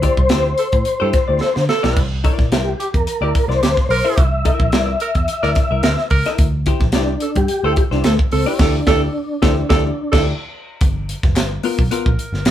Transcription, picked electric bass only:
0.17 C2
0.31 D2
0.73 A2
1.02 G2
1.29 D2
1.57 D3
1.84 B1
1.97 C2
2.38 A#1
2.52 C2
2.94 E2
3.21 D2
3.48 C2
3.62 D2
3.89 B1
4.18 C2
4.60 A#1
4.73 C2
5.15 E2
5.43 D2
5.71 C2
5.83 D2
6.11 C#2
6.39 D2
6.80 A#1
6.93 C2
7.36 G2
7.64 D2
7.91 C2
8.04 D2
8.33 C#2
8.59 D2
8.87 D2
9.42 D2
9.70 D2
10.13 D2
10.81 G1
11.24 F1
11.36 G1
11.79 B1
12.06 A#1
12.32 G1
12.46 A#1

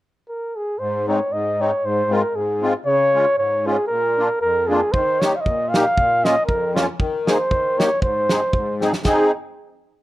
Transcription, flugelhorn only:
0.29 A#4
0.56 G#4
0.79 C5
1.08 C#5
1.33 D#5
1.61 C#5
1.85 C5
2.14 A#4
2.35 G#4
2.86 C#5
3.38 C#5
3.67 G#4
3.87 A#4
4.41 A#4
4.67 G#4
4.92 C5
5.20 C#5
5.35 F5
5.41 D#5
5.69 F5
6.24 D#5
6.46 A#4
7.29 C5
7.78 C#5
8.02 C5
9.05 G#4

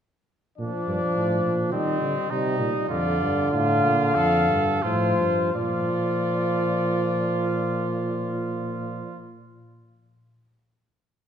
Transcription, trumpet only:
0.58 D4
1.72 C4
2.30 D#4
2.89 F4
3.51 F4
4.15 A4
4.83 F4
5.53 F4

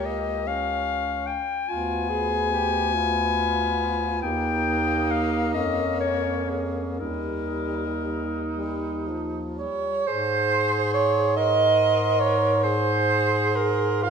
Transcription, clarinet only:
0.06 D#5
0.47 F5
1.27 G5
1.69 G#5
4.22 G5
5.11 F5
5.54 D#5
6.01 C#5
6.50 G#4
7.00 A#4
10.08 C6
11.38 C6
12.64 C6

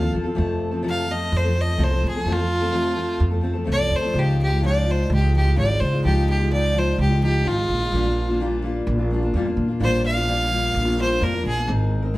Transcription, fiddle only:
Already playing: F5
0.89 F5
1.12 D#5
1.37 C5
1.61 D#5
1.84 C5
2.08 G#4
2.32 F4
3.72 D5
3.96 C5
4.19 G4
4.42 G4
4.66 D5
4.91 C5
5.14 G4
5.36 G4
5.58 D5
5.80 C5
6.04 G4
6.30 G4
6.52 D5
6.78 C5
7.01 G4
7.24 G4
7.47 F4
9.83 C5
10.06 F5
11.02 C5
11.23 A#4
11.47 G#4

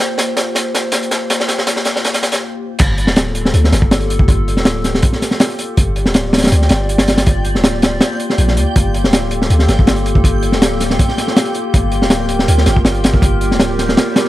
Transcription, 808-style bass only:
2.80 G1
3.07 D1
3.54 D2
3.73 G1
4.28 G1
4.57 D1
5.77 G1
6.06 D1
6.52 D2
6.70 G1
7.27 G1
7.55 D1
8.38 A#1
8.57 D2
8.76 G1
9.04 D1
9.50 D2
9.69 G1
10.24 G1
10.53 D1
11.74 G1
12.02 D1
12.48 D2
12.67 G1
13.22 G1
13.51 D1

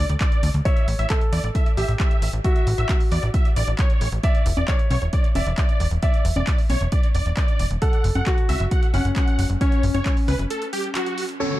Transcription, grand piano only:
Already playing: A4
0.65 C#5
1.10 A4
1.77 G4
2.44 F#4
4.24 E5
4.68 C#5
5.36 E5
6.03 E5
7.82 A4
8.27 F#4
8.94 C#4
9.61 C#4
11.40 A4

